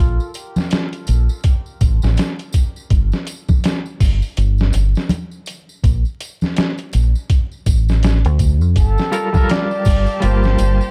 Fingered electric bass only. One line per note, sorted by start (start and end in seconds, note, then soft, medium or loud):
0.00 0.17 A#1 medium
1.09 1.27 A#1 medium
1.82 2.00 A1 medium
2.03 2.16 A1 medium
2.91 3.10 G1 medium
4.01 4.20 G1 medium
4.38 4.70 G1 medium
4.75 4.93 G1 medium
5.84 6.03 A#1 medium
6.94 7.13 A#1 medium
7.67 8.26 A1 medium
8.26 8.62 D2 medium
8.62 8.75 F2 medium
8.77 8.95 G1 medium
9.86 10.05 G1 medium
10.23 10.56 G1 medium
10.60 10.78 G1 medium